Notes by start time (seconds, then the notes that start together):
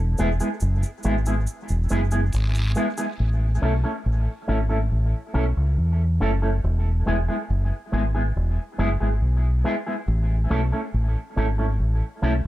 Already playing: E1
0.18 E1 G#3 B3 E4 G#4, cabasa
0.40 G#3 B3 E4 G#4, cabasa
0.60 F#1, cabasa
0.83 cabasa
1.03 G#1 G#3 B3 E4 G#4, cabasa
1.26 G#3 B3 E4 G#4, cabasa
1.47 cabasa
1.68 E1, cabasa
1.89 F#1 G#3 B3 E4 G#4, cabasa
2.11 G#3 B3 E4 G#4, cabasa
2.33 G#1, cabasa, long guiro
2.55 cabasa
2.75 G#3 B3 E4 G#4, cabasa
2.97 G#3 B3 E4 G#4, cabasa
3.20 A1
3.62 B1 A3 C#4 E4 A4
3.84 A3 C#4 E4 A4
4.06 A1
4.48 G#1 A3 C#4 E4 A4
4.69 A3 C#4 E4 A4
4.92 A1
5.34 B1 A3 C#4 E4 A4
5.57 C#2
5.78 E2
6.20 F#1 A3 C#4 E4 A4
6.42 A3 C#4 E4 A4
6.64 E1
7.06 E1 G#3 B3 E4 G#4
7.28 G#3 B3 E4 G#4
7.50 F#1
7.92 G#1 G#3 B3 E4 G#4
8.15 G#3 B3 E4 G#4
8.36 E1
8.78 F#1 G#3 B3 E4 G#4
9.00 G#1 G#3 B3 E4 G#4
9.22 B1
9.64 G#3 B3 E4 G#4
9.87 G#3 B3 E4 G#4
10.08 A1
10.50 B1 A3 C#4 E4 A4
10.72 A3 C#4 E4 A4
10.94 A1
11.36 G#1 A3 C#4 E4 A4
11.58 A3 C#4 E4 A4
11.80 A1
12.22 B1 A3 C#4 E4 A4